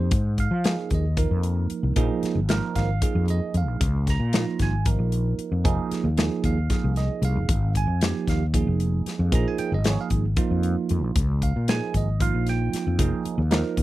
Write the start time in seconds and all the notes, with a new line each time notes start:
Already playing: F3 A#3 D#4 G4 C5
0.00 F2
0.11 G#2, kick, closed hi-hat
0.38 F5, kick, closed hi-hat
0.51 F3
0.64 F3 A#3 D#4 G#4, snare, closed hi-hat
0.90 D#2 D#5, kick, closed hi-hat
1.17 F3 A#3 D#4 A#4, kick, closed hi-hat
1.31 F2
1.43 closed hi-hat
1.70 muted fretless electric bass stroke, closed hi-hat
1.83 C2
1.96 A#1 F3 A#3 D#4 G#4, kick, closed hi-hat
2.23 muted fretless electric bass stroke, snare, closed hi-hat
2.35 G#1
2.49 F3 A#3 D#4 A#4, snare, closed hi-hat
2.76 G#1 F5, kick, snare, closed hi-hat
3.02 F3 A#3 D#4 G#4, kick, closed hi-hat
3.15 F2
3.28 D#5, closed hi-hat
3.54 F2 F5, closed hi-hat
3.68 A#1
3.80 C#2, kick, closed hi-hat
4.07 A#5, kick, snare, closed hi-hat
4.20 A#2
4.33 F3 A#3 D#4 F4, snare, closed hi-hat
4.59 G#1 G#5, kick, snare, closed hi-hat
4.85 F3 A#3 D#4 A#4, kick, closed hi-hat
4.99 A#1
5.12 closed hi-hat
5.38 muted fretless electric bass stroke, closed hi-hat
5.52 F2
5.64 F1 F3 A#3 D#4 G#4, kick, closed hi-hat
5.91 muted fretless electric bass stroke, snare, closed hi-hat
6.04 D#2
6.17 F3 A#3 D#4 G#4, snare, closed hi-hat
6.44 D#2 F5, kick, closed hi-hat
6.70 F3 A#3 D#4 G#4, kick, snare, closed hi-hat
6.84 C2
6.96 D#5, snare, closed hi-hat
7.22 C2 F5, closed hi-hat
7.36 F1
7.49 G#1, kick, closed hi-hat
7.75 G#5, kick, closed hi-hat
7.87 F2
8.01 F3 A#3 D#4 G4, snare, closed hi-hat
8.27 D#2 F5, kick, snare, closed hi-hat
8.54 F3 A#3 D#4 G#4, kick, closed hi-hat
8.67 F1
8.80 closed hi-hat
9.06 muted fretless electric bass stroke, snare, closed hi-hat
9.19 F2
9.32 A#1 F3 A#3 D#4 G#4 A#5, kick, closed hi-hat
9.48 G#5
9.58 G5, muted fretless electric bass stroke, closed hi-hat
9.72 G#1 D#5
9.84 F3 A#3 D#4 G#4 C#5, snare, closed hi-hat
10.01 F5
10.10 G#1, kick, closed hi-hat
10.37 F3 A#3 D#4 F4, kick, closed hi-hat
10.51 F2
10.63 closed hi-hat
10.89 F2, closed hi-hat
11.04 A#1
11.16 C#2, kick, closed hi-hat
11.42 F5, kick, closed hi-hat
11.56 A#2
11.68 F3 A#3 D#4 G#4 G#5, snare, closed hi-hat
11.94 G#1 D#5, kick, closed hi-hat
12.20 F3 A#3 D#4 F4 F5, kick, closed hi-hat
12.35 A#1
12.47 G5, snare, closed hi-hat
12.73 muted fretless electric bass stroke, snare, closed hi-hat
12.87 F2
12.99 F1 F3 A#3 D#4 G#4, kick, closed hi-hat
13.25 muted fretless electric bass stroke, closed hi-hat
13.38 D#2
13.51 F3 A#3 D#4 A#4, snare, closed hi-hat
13.77 D#2, kick, closed hi-hat